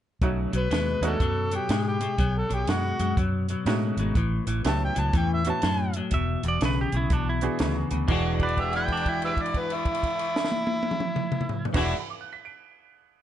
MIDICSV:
0, 0, Header, 1, 7, 480
1, 0, Start_track
1, 0, Key_signature, 4, "major"
1, 0, Tempo, 489796
1, 221, Time_signature, 4, 2, 24, 8
1, 12956, End_track
2, 0, Start_track
2, 0, Title_t, "Harmonica"
2, 0, Program_c, 0, 22
2, 560, Note_on_c, 0, 71, 84
2, 1018, Note_off_c, 0, 71, 0
2, 1045, Note_on_c, 0, 62, 51
2, 1045, Note_on_c, 0, 66, 51
2, 1045, Note_on_c, 0, 69, 73
2, 1115, Note_off_c, 0, 66, 0
2, 1131, Note_off_c, 0, 62, 0
2, 1501, Note_off_c, 0, 69, 0
2, 1524, Note_on_c, 0, 67, 78
2, 1826, Note_off_c, 0, 67, 0
2, 1841, Note_on_c, 0, 67, 76
2, 2331, Note_on_c, 0, 69, 65
2, 2346, Note_off_c, 0, 67, 0
2, 2475, Note_off_c, 0, 69, 0
2, 2491, Note_on_c, 0, 67, 78
2, 2654, Note_on_c, 0, 66, 80
2, 2668, Note_off_c, 0, 67, 0
2, 3109, Note_off_c, 0, 66, 0
2, 4587, Note_on_c, 0, 81, 84
2, 4727, Note_off_c, 0, 81, 0
2, 4751, Note_on_c, 0, 79, 83
2, 4903, Note_on_c, 0, 81, 76
2, 4918, Note_off_c, 0, 79, 0
2, 5046, Note_off_c, 0, 81, 0
2, 5070, Note_on_c, 0, 79, 82
2, 5210, Note_off_c, 0, 79, 0
2, 5234, Note_on_c, 0, 76, 67
2, 5372, Note_off_c, 0, 76, 0
2, 5388, Note_on_c, 0, 81, 92
2, 5841, Note_off_c, 0, 81, 0
2, 8264, Note_on_c, 0, 74, 79
2, 8431, Note_on_c, 0, 76, 72
2, 8446, Note_off_c, 0, 74, 0
2, 8571, Note_off_c, 0, 76, 0
2, 8583, Note_on_c, 0, 79, 87
2, 9037, Note_off_c, 0, 79, 0
2, 9065, Note_on_c, 0, 67, 56
2, 9065, Note_on_c, 0, 71, 56
2, 9065, Note_on_c, 0, 76, 79
2, 9135, Note_off_c, 0, 71, 0
2, 9148, Note_off_c, 0, 67, 0
2, 9232, Note_on_c, 0, 74, 84
2, 9247, Note_off_c, 0, 76, 0
2, 9394, Note_on_c, 0, 71, 82
2, 9409, Note_off_c, 0, 74, 0
2, 9541, Note_on_c, 0, 64, 100
2, 9556, Note_off_c, 0, 71, 0
2, 11415, Note_off_c, 0, 64, 0
2, 11547, Note_on_c, 0, 64, 82
2, 11708, Note_off_c, 0, 64, 0
2, 12956, End_track
3, 0, Start_track
3, 0, Title_t, "Upright piano"
3, 0, Program_c, 1, 0
3, 218, Note_on_c, 1, 57, 52
3, 218, Note_on_c, 1, 61, 50
3, 225, Note_on_c, 1, 63, 49
3, 227, Note_on_c, 1, 66, 61
3, 496, Note_off_c, 1, 57, 0
3, 497, Note_off_c, 1, 61, 0
3, 500, Note_off_c, 1, 63, 0
3, 501, Note_off_c, 1, 66, 0
3, 1002, Note_on_c, 1, 61, 59
3, 1004, Note_on_c, 1, 57, 69
3, 1006, Note_on_c, 1, 63, 61
3, 1015, Note_on_c, 1, 66, 70
3, 1162, Note_off_c, 1, 61, 0
3, 1163, Note_off_c, 1, 57, 0
3, 1164, Note_off_c, 1, 63, 0
3, 1169, Note_off_c, 1, 66, 0
3, 3590, Note_on_c, 1, 57, 60
3, 3591, Note_on_c, 1, 63, 59
3, 3592, Note_on_c, 1, 61, 57
3, 3597, Note_on_c, 1, 66, 69
3, 4073, Note_off_c, 1, 57, 0
3, 4073, Note_off_c, 1, 63, 0
3, 4074, Note_off_c, 1, 61, 0
3, 4076, Note_off_c, 1, 66, 0
3, 4554, Note_on_c, 1, 59, 55
3, 4557, Note_on_c, 1, 61, 55
3, 4560, Note_on_c, 1, 64, 52
3, 4560, Note_on_c, 1, 67, 65
3, 5283, Note_off_c, 1, 59, 0
3, 5284, Note_off_c, 1, 61, 0
3, 5286, Note_off_c, 1, 64, 0
3, 5286, Note_off_c, 1, 67, 0
3, 5356, Note_on_c, 1, 59, 67
3, 5358, Note_on_c, 1, 64, 60
3, 5359, Note_on_c, 1, 61, 60
3, 5361, Note_on_c, 1, 66, 72
3, 5507, Note_off_c, 1, 59, 0
3, 5508, Note_off_c, 1, 64, 0
3, 5509, Note_off_c, 1, 61, 0
3, 5509, Note_off_c, 1, 66, 0
3, 7271, Note_on_c, 1, 59, 62
3, 7277, Note_on_c, 1, 62, 56
3, 7280, Note_on_c, 1, 66, 55
3, 7285, Note_on_c, 1, 68, 69
3, 7888, Note_off_c, 1, 59, 0
3, 7891, Note_off_c, 1, 62, 0
3, 7893, Note_off_c, 1, 66, 0
3, 7895, Note_off_c, 1, 68, 0
3, 7917, Note_on_c, 1, 40, 61
3, 7923, Note_on_c, 1, 52, 58
3, 7934, Note_on_c, 1, 54, 53
3, 7938, Note_on_c, 1, 62, 59
3, 7940, Note_on_c, 1, 68, 67
3, 8401, Note_on_c, 1, 71, 43
3, 8475, Note_on_c, 1, 74, 40
3, 8551, Note_on_c, 1, 78, 39
3, 8643, Note_on_c, 1, 83, 39
3, 8740, Note_on_c, 1, 86, 36
3, 8844, Note_on_c, 1, 90, 35
3, 8955, Note_on_c, 1, 95, 33
3, 9084, Note_on_c, 1, 98, 31
3, 11403, Note_off_c, 1, 71, 0
3, 11440, Note_off_c, 1, 40, 0
3, 11440, Note_off_c, 1, 74, 0
3, 11443, Note_off_c, 1, 52, 0
3, 11449, Note_off_c, 1, 54, 0
3, 11450, Note_off_c, 1, 62, 0
3, 11452, Note_off_c, 1, 68, 0
3, 11478, Note_off_c, 1, 78, 0
3, 11503, Note_on_c, 1, 40, 60
3, 11507, Note_on_c, 1, 52, 61
3, 11518, Note_on_c, 1, 71, 44
3, 11519, Note_on_c, 1, 54, 55
3, 11521, Note_on_c, 1, 62, 59
3, 11524, Note_off_c, 1, 83, 0
3, 11539, Note_on_c, 1, 68, 66
3, 11573, Note_off_c, 1, 86, 0
3, 11592, Note_on_c, 1, 74, 43
3, 11625, Note_off_c, 1, 90, 0
3, 11671, Note_on_c, 1, 78, 37
3, 11681, Note_off_c, 1, 95, 0
3, 11686, Note_off_c, 1, 71, 0
3, 11691, Note_off_c, 1, 40, 0
3, 11693, Note_off_c, 1, 52, 0
3, 11699, Note_off_c, 1, 54, 0
3, 11700, Note_off_c, 1, 62, 0
3, 11709, Note_off_c, 1, 68, 0
3, 11726, Note_off_c, 1, 74, 0
3, 11745, Note_off_c, 1, 98, 0
3, 11758, Note_on_c, 1, 83, 36
3, 11768, Note_off_c, 1, 78, 0
3, 11814, Note_off_c, 1, 83, 0
3, 11858, Note_on_c, 1, 86, 35
3, 11876, Note_off_c, 1, 86, 0
3, 11963, Note_on_c, 1, 90, 34
3, 11981, Note_off_c, 1, 90, 0
3, 12080, Note_on_c, 1, 95, 33
3, 12098, Note_off_c, 1, 95, 0
3, 12201, Note_on_c, 1, 98, 32
3, 12219, Note_off_c, 1, 98, 0
3, 12956, End_track
4, 0, Start_track
4, 0, Title_t, "Electric slide guitar"
4, 0, Program_c, 2, 29
4, 6016, Note_on_c, 2, 76, 82
4, 6319, Note_off_c, 2, 76, 0
4, 6354, Note_on_c, 2, 74, 76
4, 6493, Note_off_c, 2, 74, 0
4, 6519, Note_on_c, 2, 71, 71
4, 6656, Note_off_c, 2, 71, 0
4, 6675, Note_on_c, 2, 67, 82
4, 6814, Note_off_c, 2, 67, 0
4, 6826, Note_on_c, 2, 64, 78
4, 6969, Note_off_c, 2, 64, 0
4, 6987, Note_on_c, 2, 62, 72
4, 7130, Note_off_c, 2, 62, 0
4, 7148, Note_on_c, 2, 64, 86
4, 7600, Note_off_c, 2, 64, 0
4, 8260, Note_on_c, 2, 71, 74
4, 8406, Note_off_c, 2, 71, 0
4, 8415, Note_on_c, 2, 67, 72
4, 8563, Note_off_c, 2, 67, 0
4, 8589, Note_on_c, 2, 64, 80
4, 8730, Note_off_c, 2, 64, 0
4, 8747, Note_on_c, 2, 62, 79
4, 8889, Note_off_c, 2, 62, 0
4, 8906, Note_on_c, 2, 64, 80
4, 11416, Note_off_c, 2, 64, 0
4, 11537, Note_on_c, 2, 64, 86
4, 11703, Note_off_c, 2, 64, 0
4, 12956, End_track
5, 0, Start_track
5, 0, Title_t, "Clean electric guitar"
5, 0, Program_c, 3, 27
5, 214, Note_on_c, 3, 47, 76
5, 225, Note_on_c, 3, 54, 89
5, 495, Note_off_c, 3, 47, 0
5, 500, Note_off_c, 3, 54, 0
5, 516, Note_on_c, 3, 47, 66
5, 524, Note_on_c, 3, 54, 78
5, 679, Note_off_c, 3, 47, 0
5, 683, Note_off_c, 3, 54, 0
5, 692, Note_on_c, 3, 47, 73
5, 694, Note_on_c, 3, 56, 88
5, 974, Note_off_c, 3, 47, 0
5, 975, Note_off_c, 3, 56, 0
5, 1002, Note_on_c, 3, 47, 65
5, 1005, Note_on_c, 3, 56, 78
5, 1162, Note_off_c, 3, 47, 0
5, 1164, Note_off_c, 3, 56, 0
5, 1183, Note_on_c, 3, 47, 76
5, 1185, Note_on_c, 3, 54, 88
5, 1460, Note_off_c, 3, 47, 0
5, 1461, Note_off_c, 3, 54, 0
5, 1494, Note_on_c, 3, 47, 66
5, 1495, Note_on_c, 3, 54, 72
5, 1649, Note_off_c, 3, 47, 0
5, 1649, Note_off_c, 3, 54, 0
5, 1666, Note_on_c, 3, 47, 85
5, 1674, Note_on_c, 3, 56, 85
5, 1943, Note_off_c, 3, 47, 0
5, 1946, Note_off_c, 3, 56, 0
5, 1967, Note_on_c, 3, 47, 70
5, 1970, Note_on_c, 3, 56, 69
5, 2126, Note_off_c, 3, 47, 0
5, 2127, Note_off_c, 3, 56, 0
5, 2138, Note_on_c, 3, 47, 75
5, 2144, Note_on_c, 3, 54, 85
5, 2419, Note_off_c, 3, 47, 0
5, 2422, Note_off_c, 3, 54, 0
5, 2443, Note_on_c, 3, 47, 77
5, 2445, Note_on_c, 3, 54, 72
5, 2605, Note_off_c, 3, 47, 0
5, 2606, Note_off_c, 3, 54, 0
5, 2628, Note_on_c, 3, 47, 76
5, 2636, Note_on_c, 3, 56, 77
5, 2906, Note_off_c, 3, 47, 0
5, 2909, Note_off_c, 3, 56, 0
5, 2934, Note_on_c, 3, 47, 63
5, 2939, Note_on_c, 3, 56, 76
5, 3091, Note_off_c, 3, 47, 0
5, 3094, Note_off_c, 3, 56, 0
5, 3114, Note_on_c, 3, 47, 68
5, 3118, Note_on_c, 3, 54, 79
5, 3389, Note_off_c, 3, 47, 0
5, 3391, Note_off_c, 3, 54, 0
5, 3430, Note_on_c, 3, 47, 64
5, 3434, Note_on_c, 3, 54, 77
5, 3580, Note_off_c, 3, 47, 0
5, 3583, Note_off_c, 3, 54, 0
5, 3595, Note_on_c, 3, 47, 85
5, 3601, Note_on_c, 3, 56, 88
5, 3871, Note_off_c, 3, 47, 0
5, 3874, Note_off_c, 3, 56, 0
5, 3910, Note_on_c, 3, 47, 68
5, 3915, Note_on_c, 3, 56, 80
5, 4062, Note_off_c, 3, 47, 0
5, 4064, Note_off_c, 3, 56, 0
5, 4080, Note_on_c, 3, 45, 84
5, 4085, Note_on_c, 3, 52, 82
5, 4354, Note_off_c, 3, 45, 0
5, 4357, Note_off_c, 3, 52, 0
5, 4380, Note_on_c, 3, 45, 67
5, 4385, Note_on_c, 3, 52, 84
5, 4537, Note_off_c, 3, 45, 0
5, 4540, Note_off_c, 3, 52, 0
5, 4552, Note_on_c, 3, 45, 76
5, 4557, Note_on_c, 3, 54, 82
5, 4831, Note_off_c, 3, 45, 0
5, 4834, Note_off_c, 3, 54, 0
5, 4854, Note_on_c, 3, 45, 68
5, 4863, Note_on_c, 3, 54, 82
5, 5015, Note_off_c, 3, 45, 0
5, 5020, Note_off_c, 3, 54, 0
5, 5035, Note_on_c, 3, 45, 73
5, 5041, Note_on_c, 3, 52, 84
5, 5313, Note_off_c, 3, 45, 0
5, 5316, Note_off_c, 3, 52, 0
5, 5343, Note_on_c, 3, 45, 68
5, 5348, Note_on_c, 3, 52, 74
5, 5501, Note_off_c, 3, 45, 0
5, 5503, Note_off_c, 3, 52, 0
5, 5520, Note_on_c, 3, 54, 93
5, 5521, Note_on_c, 3, 45, 79
5, 5796, Note_off_c, 3, 54, 0
5, 5797, Note_off_c, 3, 45, 0
5, 5840, Note_on_c, 3, 45, 70
5, 5847, Note_on_c, 3, 54, 74
5, 5990, Note_off_c, 3, 45, 0
5, 5993, Note_off_c, 3, 54, 0
5, 6006, Note_on_c, 3, 40, 77
5, 6013, Note_on_c, 3, 47, 80
5, 6280, Note_off_c, 3, 40, 0
5, 6283, Note_off_c, 3, 47, 0
5, 6311, Note_on_c, 3, 40, 71
5, 6316, Note_on_c, 3, 47, 72
5, 6465, Note_off_c, 3, 40, 0
5, 6468, Note_off_c, 3, 47, 0
5, 6480, Note_on_c, 3, 40, 73
5, 6484, Note_on_c, 3, 49, 85
5, 6757, Note_off_c, 3, 40, 0
5, 6759, Note_off_c, 3, 49, 0
5, 6797, Note_on_c, 3, 40, 57
5, 6806, Note_on_c, 3, 49, 78
5, 6949, Note_off_c, 3, 40, 0
5, 6953, Note_off_c, 3, 49, 0
5, 6971, Note_on_c, 3, 40, 76
5, 6973, Note_on_c, 3, 47, 85
5, 7242, Note_off_c, 3, 40, 0
5, 7243, Note_off_c, 3, 47, 0
5, 7273, Note_on_c, 3, 40, 71
5, 7281, Note_on_c, 3, 47, 74
5, 7427, Note_off_c, 3, 40, 0
5, 7430, Note_off_c, 3, 47, 0
5, 7449, Note_on_c, 3, 40, 69
5, 7454, Note_on_c, 3, 49, 85
5, 7721, Note_off_c, 3, 40, 0
5, 7724, Note_off_c, 3, 49, 0
5, 7752, Note_on_c, 3, 40, 62
5, 7755, Note_on_c, 3, 49, 74
5, 7906, Note_off_c, 3, 40, 0
5, 7907, Note_off_c, 3, 49, 0
5, 7916, Note_on_c, 3, 52, 89
5, 7928, Note_on_c, 3, 56, 86
5, 7943, Note_on_c, 3, 62, 84
5, 7953, Note_on_c, 3, 66, 95
5, 11440, Note_off_c, 3, 52, 0
5, 11446, Note_off_c, 3, 56, 0
5, 11453, Note_off_c, 3, 62, 0
5, 11458, Note_off_c, 3, 66, 0
5, 11493, Note_on_c, 3, 52, 85
5, 11510, Note_on_c, 3, 56, 84
5, 11520, Note_on_c, 3, 62, 90
5, 11530, Note_on_c, 3, 66, 98
5, 11686, Note_off_c, 3, 52, 0
5, 11694, Note_off_c, 3, 56, 0
5, 11699, Note_off_c, 3, 62, 0
5, 11704, Note_off_c, 3, 66, 0
5, 12956, End_track
6, 0, Start_track
6, 0, Title_t, "Fingered electric bass"
6, 0, Program_c, 4, 33
6, 210, Note_on_c, 4, 35, 85
6, 444, Note_off_c, 4, 35, 0
6, 520, Note_on_c, 4, 35, 76
6, 653, Note_off_c, 4, 35, 0
6, 691, Note_on_c, 4, 39, 82
6, 925, Note_off_c, 4, 39, 0
6, 989, Note_on_c, 4, 39, 80
6, 1126, Note_off_c, 4, 39, 0
6, 1179, Note_on_c, 4, 42, 86
6, 1540, Note_off_c, 4, 42, 0
6, 1657, Note_on_c, 4, 44, 81
6, 2019, Note_off_c, 4, 44, 0
6, 2140, Note_on_c, 4, 35, 88
6, 2372, Note_off_c, 4, 35, 0
6, 2454, Note_on_c, 4, 35, 82
6, 2584, Note_off_c, 4, 35, 0
6, 2624, Note_on_c, 4, 42, 72
6, 2856, Note_off_c, 4, 42, 0
6, 2935, Note_on_c, 4, 42, 78
6, 3065, Note_off_c, 4, 42, 0
6, 3108, Note_on_c, 4, 42, 96
6, 3469, Note_off_c, 4, 42, 0
6, 3583, Note_on_c, 4, 45, 86
6, 3816, Note_off_c, 4, 45, 0
6, 3888, Note_on_c, 4, 32, 80
6, 4023, Note_off_c, 4, 32, 0
6, 4070, Note_on_c, 4, 33, 95
6, 4302, Note_off_c, 4, 33, 0
6, 4378, Note_on_c, 4, 33, 75
6, 4509, Note_off_c, 4, 33, 0
6, 4556, Note_on_c, 4, 37, 83
6, 4786, Note_off_c, 4, 37, 0
6, 4866, Note_on_c, 4, 37, 80
6, 4995, Note_off_c, 4, 37, 0
6, 5036, Note_on_c, 4, 40, 91
6, 5396, Note_off_c, 4, 40, 0
6, 5515, Note_on_c, 4, 42, 82
6, 5876, Note_off_c, 4, 42, 0
6, 5993, Note_on_c, 4, 28, 95
6, 6225, Note_off_c, 4, 28, 0
6, 6306, Note_on_c, 4, 28, 74
6, 6436, Note_off_c, 4, 28, 0
6, 6484, Note_on_c, 4, 35, 79
6, 6712, Note_off_c, 4, 35, 0
6, 6787, Note_on_c, 4, 35, 84
6, 6917, Note_off_c, 4, 35, 0
6, 6961, Note_on_c, 4, 35, 87
6, 7319, Note_off_c, 4, 35, 0
6, 7446, Note_on_c, 4, 38, 77
6, 7674, Note_off_c, 4, 38, 0
6, 7753, Note_on_c, 4, 38, 80
6, 7881, Note_off_c, 4, 38, 0
6, 7923, Note_on_c, 4, 28, 96
6, 11404, Note_off_c, 4, 28, 0
6, 11511, Note_on_c, 4, 28, 87
6, 11682, Note_off_c, 4, 28, 0
6, 12956, End_track
7, 0, Start_track
7, 0, Title_t, "Drums"
7, 211, Note_on_c, 9, 36, 95
7, 213, Note_on_c, 9, 42, 67
7, 309, Note_off_c, 9, 36, 0
7, 311, Note_off_c, 9, 42, 0
7, 522, Note_on_c, 9, 42, 57
7, 620, Note_off_c, 9, 42, 0
7, 699, Note_on_c, 9, 42, 75
7, 713, Note_on_c, 9, 38, 97
7, 797, Note_off_c, 9, 42, 0
7, 811, Note_off_c, 9, 38, 0
7, 1007, Note_on_c, 9, 42, 56
7, 1105, Note_off_c, 9, 42, 0
7, 1177, Note_on_c, 9, 36, 102
7, 1178, Note_on_c, 9, 42, 76
7, 1275, Note_off_c, 9, 36, 0
7, 1276, Note_off_c, 9, 42, 0
7, 1484, Note_on_c, 9, 42, 58
7, 1582, Note_off_c, 9, 42, 0
7, 1657, Note_on_c, 9, 42, 81
7, 1671, Note_on_c, 9, 38, 97
7, 1755, Note_off_c, 9, 42, 0
7, 1769, Note_off_c, 9, 38, 0
7, 1966, Note_on_c, 9, 42, 56
7, 2064, Note_off_c, 9, 42, 0
7, 2141, Note_on_c, 9, 42, 77
7, 2142, Note_on_c, 9, 36, 94
7, 2239, Note_off_c, 9, 42, 0
7, 2240, Note_off_c, 9, 36, 0
7, 2455, Note_on_c, 9, 42, 57
7, 2553, Note_off_c, 9, 42, 0
7, 2621, Note_on_c, 9, 42, 76
7, 2635, Note_on_c, 9, 38, 104
7, 2719, Note_off_c, 9, 42, 0
7, 2733, Note_off_c, 9, 38, 0
7, 2935, Note_on_c, 9, 42, 49
7, 3033, Note_off_c, 9, 42, 0
7, 3108, Note_on_c, 9, 36, 112
7, 3110, Note_on_c, 9, 42, 74
7, 3206, Note_off_c, 9, 36, 0
7, 3208, Note_off_c, 9, 42, 0
7, 3416, Note_on_c, 9, 42, 54
7, 3514, Note_off_c, 9, 42, 0
7, 3590, Note_on_c, 9, 42, 68
7, 3603, Note_on_c, 9, 38, 95
7, 3688, Note_off_c, 9, 42, 0
7, 3701, Note_off_c, 9, 38, 0
7, 3896, Note_on_c, 9, 42, 52
7, 3994, Note_off_c, 9, 42, 0
7, 4070, Note_on_c, 9, 36, 98
7, 4071, Note_on_c, 9, 42, 68
7, 4168, Note_off_c, 9, 36, 0
7, 4169, Note_off_c, 9, 42, 0
7, 4380, Note_on_c, 9, 42, 56
7, 4478, Note_off_c, 9, 42, 0
7, 4553, Note_on_c, 9, 42, 76
7, 4566, Note_on_c, 9, 38, 93
7, 4651, Note_off_c, 9, 42, 0
7, 4664, Note_off_c, 9, 38, 0
7, 4861, Note_on_c, 9, 42, 60
7, 4959, Note_off_c, 9, 42, 0
7, 5032, Note_on_c, 9, 42, 81
7, 5033, Note_on_c, 9, 36, 108
7, 5130, Note_off_c, 9, 42, 0
7, 5131, Note_off_c, 9, 36, 0
7, 5337, Note_on_c, 9, 42, 60
7, 5435, Note_off_c, 9, 42, 0
7, 5506, Note_on_c, 9, 42, 83
7, 5520, Note_on_c, 9, 38, 103
7, 5604, Note_off_c, 9, 42, 0
7, 5618, Note_off_c, 9, 38, 0
7, 5816, Note_on_c, 9, 42, 58
7, 5914, Note_off_c, 9, 42, 0
7, 5987, Note_on_c, 9, 42, 79
7, 5995, Note_on_c, 9, 36, 93
7, 6085, Note_off_c, 9, 42, 0
7, 6093, Note_off_c, 9, 36, 0
7, 6305, Note_on_c, 9, 42, 57
7, 6403, Note_off_c, 9, 42, 0
7, 6476, Note_on_c, 9, 42, 72
7, 6490, Note_on_c, 9, 38, 101
7, 6574, Note_off_c, 9, 42, 0
7, 6588, Note_off_c, 9, 38, 0
7, 6785, Note_on_c, 9, 42, 52
7, 6883, Note_off_c, 9, 42, 0
7, 6959, Note_on_c, 9, 42, 82
7, 6962, Note_on_c, 9, 36, 112
7, 7057, Note_off_c, 9, 42, 0
7, 7060, Note_off_c, 9, 36, 0
7, 7265, Note_on_c, 9, 42, 52
7, 7363, Note_off_c, 9, 42, 0
7, 7437, Note_on_c, 9, 42, 70
7, 7450, Note_on_c, 9, 38, 109
7, 7535, Note_off_c, 9, 42, 0
7, 7548, Note_off_c, 9, 38, 0
7, 7748, Note_on_c, 9, 42, 53
7, 7846, Note_off_c, 9, 42, 0
7, 7921, Note_on_c, 9, 49, 74
7, 7922, Note_on_c, 9, 36, 99
7, 8019, Note_off_c, 9, 49, 0
7, 8020, Note_off_c, 9, 36, 0
7, 8227, Note_on_c, 9, 36, 62
7, 8229, Note_on_c, 9, 49, 42
7, 8317, Note_on_c, 9, 57, 39
7, 8325, Note_off_c, 9, 36, 0
7, 8327, Note_off_c, 9, 49, 0
7, 8401, Note_on_c, 9, 36, 58
7, 8403, Note_on_c, 9, 49, 41
7, 8415, Note_off_c, 9, 57, 0
7, 8499, Note_off_c, 9, 36, 0
7, 8501, Note_off_c, 9, 49, 0
7, 8553, Note_on_c, 9, 57, 44
7, 8651, Note_off_c, 9, 57, 0
7, 8704, Note_on_c, 9, 36, 50
7, 8706, Note_on_c, 9, 49, 37
7, 8791, Note_on_c, 9, 57, 45
7, 8802, Note_off_c, 9, 36, 0
7, 8804, Note_off_c, 9, 49, 0
7, 8876, Note_on_c, 9, 36, 62
7, 8877, Note_on_c, 9, 49, 47
7, 8889, Note_off_c, 9, 57, 0
7, 8974, Note_off_c, 9, 36, 0
7, 8975, Note_off_c, 9, 49, 0
7, 9035, Note_on_c, 9, 57, 49
7, 9133, Note_off_c, 9, 57, 0
7, 9181, Note_on_c, 9, 36, 56
7, 9186, Note_on_c, 9, 49, 44
7, 9267, Note_on_c, 9, 57, 43
7, 9279, Note_off_c, 9, 36, 0
7, 9284, Note_off_c, 9, 49, 0
7, 9352, Note_on_c, 9, 36, 59
7, 9352, Note_on_c, 9, 49, 46
7, 9365, Note_off_c, 9, 57, 0
7, 9450, Note_off_c, 9, 36, 0
7, 9450, Note_off_c, 9, 49, 0
7, 9507, Note_on_c, 9, 57, 47
7, 9605, Note_off_c, 9, 57, 0
7, 9656, Note_on_c, 9, 49, 46
7, 9657, Note_on_c, 9, 36, 60
7, 9746, Note_on_c, 9, 57, 52
7, 9754, Note_off_c, 9, 49, 0
7, 9755, Note_off_c, 9, 36, 0
7, 9831, Note_on_c, 9, 36, 54
7, 9834, Note_on_c, 9, 49, 48
7, 9844, Note_off_c, 9, 57, 0
7, 9929, Note_off_c, 9, 36, 0
7, 9932, Note_off_c, 9, 49, 0
7, 9988, Note_on_c, 9, 57, 46
7, 10086, Note_off_c, 9, 57, 0
7, 10155, Note_on_c, 9, 38, 90
7, 10235, Note_off_c, 9, 38, 0
7, 10235, Note_on_c, 9, 38, 91
7, 10306, Note_on_c, 9, 48, 86
7, 10333, Note_off_c, 9, 38, 0
7, 10404, Note_off_c, 9, 48, 0
7, 10455, Note_on_c, 9, 48, 85
7, 10553, Note_off_c, 9, 48, 0
7, 10611, Note_on_c, 9, 48, 86
7, 10694, Note_on_c, 9, 47, 93
7, 10709, Note_off_c, 9, 48, 0
7, 10782, Note_off_c, 9, 47, 0
7, 10782, Note_on_c, 9, 47, 93
7, 10880, Note_off_c, 9, 47, 0
7, 10937, Note_on_c, 9, 45, 92
7, 11035, Note_off_c, 9, 45, 0
7, 11091, Note_on_c, 9, 45, 96
7, 11179, Note_off_c, 9, 45, 0
7, 11179, Note_on_c, 9, 45, 91
7, 11263, Note_on_c, 9, 43, 92
7, 11277, Note_off_c, 9, 45, 0
7, 11361, Note_off_c, 9, 43, 0
7, 11418, Note_on_c, 9, 43, 93
7, 11506, Note_on_c, 9, 49, 92
7, 11510, Note_on_c, 9, 36, 97
7, 11516, Note_off_c, 9, 43, 0
7, 11520, Note_on_c, 9, 38, 95
7, 11604, Note_off_c, 9, 49, 0
7, 11608, Note_off_c, 9, 36, 0
7, 11618, Note_off_c, 9, 38, 0
7, 12956, End_track
0, 0, End_of_file